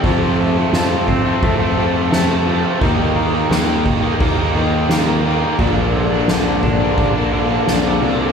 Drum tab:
CC |xxxxxxxx|xxxxxxxx|xxxxxxxx|
SD |--o---o-|--o---o-|--o---o-|
BD |o--oo---|o--oo---|o--oo---|